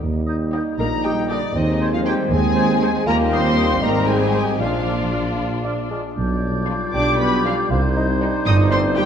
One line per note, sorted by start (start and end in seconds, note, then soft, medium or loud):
0.01 0.63 D#2 medium
0.01 1.51 G3 medium
0.01 1.51 D#4 medium
0.27 0.37 D#4 medium
0.27 0.36 D#5 medium
0.27 0.34 G6 medium
0.53 0.72 A#3 medium
0.53 0.63 D#4 medium
0.53 0.72 G4 medium
0.53 0.62 D#5 soft
0.53 0.60 G6 soft
0.78 1.40 A#1 medium
0.78 0.87 A#3 medium
0.78 1.56 D#4 medium
0.78 0.87 A#4 medium
0.78 1.02 A#5 medium
1.04 1.29 G3 medium
1.04 1.14 D#4 medium
1.04 1.12 G4 medium
1.04 1.14 D#5 medium
1.04 1.30 G5 medium
1.04 1.11 G6 medium
1.29 1.37 D3 medium
1.29 1.49 A#3 medium
1.29 1.38 D4 medium
1.29 1.39 D#4 medium
1.29 1.49 G4 medium
1.29 1.54 D5 medium
1.29 1.39 D#5 medium
1.29 1.37 G6 medium
1.55 2.15 D#2 medium
1.55 1.92 D#3 medium
1.55 3.04 G#3 medium
1.55 3.06 C4 medium
1.55 3.07 C4 medium
1.55 1.93 D#4 medium
1.55 1.93 D#5 medium
1.79 1.89 D#4 medium
1.79 1.90 C5 medium
1.79 1.87 G#6 medium
1.93 2.06 F3 medium
1.93 1.98 F4 medium
1.93 1.98 F5 medium
2.05 2.30 G3 medium
2.05 2.25 C4 medium
2.05 2.14 D#4 medium
2.05 2.14 G4 medium
2.05 2.25 G#4 medium
2.05 2.15 C5 medium
2.05 2.13 G5 loud
2.05 2.13 G#6 medium
2.30 2.91 D#2 medium
2.30 2.92 D#2 medium
2.30 3.07 G#3 medium
2.30 3.06 G#4 medium
2.30 3.05 G#5 loud
2.56 2.66 D#4 medium
2.56 2.65 C5 medium
2.56 2.63 G#6 medium
2.81 3.01 C4 medium
2.81 2.91 D#4 medium
2.81 3.01 G#4 medium
2.81 2.91 C5 medium
2.81 2.89 G#6 medium
3.07 3.79 D#2 medium
3.07 3.84 D#2 medium
3.07 4.61 G3 medium
3.07 3.32 A#3 medium
3.07 3.79 A#3 medium
3.07 3.82 A#3 medium
3.07 3.84 F4 loud
3.07 3.79 G4 medium
3.07 3.15 A#4 medium
3.07 3.15 A#5 loud
3.32 3.82 C4 medium
3.32 3.41 D#4 medium
3.32 3.82 C5 medium
3.32 3.42 D#5 medium
3.32 3.82 C6 loud
3.32 3.39 G6 medium
3.57 3.66 D#4 medium
3.57 3.67 D#5 medium
3.57 3.63 G6 medium
3.83 4.62 G#1 medium
3.83 4.60 G#1 medium
3.83 4.09 A#3 medium
3.83 4.60 C4 medium
3.83 4.61 C4 medium
3.83 4.60 D#4 medium
3.83 4.59 G4 medium
3.83 4.08 A#4 medium
3.83 4.08 A#5 loud
4.08 4.59 G#3 medium
4.08 4.18 D#4 medium
4.08 4.60 G#4 medium
4.08 4.18 C5 medium
4.08 4.60 G#5 medium
4.08 4.15 G6 medium
4.33 4.43 D#4 medium
4.33 4.44 C5 medium
4.33 4.40 G6 medium
4.60 5.97 A#1 medium
4.60 5.91 F3 medium
4.60 5.37 F3 medium
4.60 7.66 D4 medium
4.60 5.32 D4 medium
4.60 5.94 D4 medium
4.60 5.36 F4 medium
4.60 5.97 F4 medium
4.60 5.37 F5 medium
4.85 4.95 F4 soft
4.85 4.96 D5 soft
4.85 4.92 F6 medium
5.12 5.22 F4 soft
5.12 5.22 D5 soft
5.12 5.18 F6 soft
5.38 5.66 F4 medium
5.64 5.90 D4 medium
5.64 5.74 F4 soft
5.64 5.74 D5 soft
5.64 5.70 F6 soft
5.91 6.03 G#3 medium
5.91 6.01 F4 soft
5.91 6.01 D5 soft
5.91 5.98 F6 medium
6.17 6.79 B1 medium
6.17 9.05 G3 medium
6.17 7.72 F4 medium
6.17 7.67 D5 medium
6.17 9.05 G6 medium
6.69 6.88 D4 medium
6.69 6.88 F4 medium
6.94 7.55 B1 medium
6.94 7.18 D4 medium
6.94 7.66 G4 medium
6.94 7.18 D5 medium
6.94 7.18 D6 medium
7.19 7.45 B3 medium
7.19 7.45 B4 medium
7.19 7.45 B5 medium
7.45 7.54 F3 medium
7.45 7.65 D4 medium
7.45 7.53 F4 medium
7.45 7.64 F4 medium
7.45 7.53 F5 medium
7.70 8.31 C2 medium
7.70 9.05 C4 medium
7.70 9.05 D#4 medium
7.70 7.82 F4 medium
7.70 9.05 C5 medium
7.96 8.07 D#4 medium
8.21 8.40 C4 medium
8.21 9.05 D4 medium
8.21 8.40 D#4 medium
8.46 9.05 G1 medium
8.46 8.69 D#4 loud
8.46 8.54 D#5 medium
8.46 8.54 D#6 loud
8.71 8.79 C4 medium
8.71 8.79 C5 medium
8.71 8.79 C6 loud
8.96 9.05 G3 medium
8.96 9.05 C4 medium
8.96 9.05 D#4 medium
8.96 9.04 G4 medium
8.96 9.05 G5 loud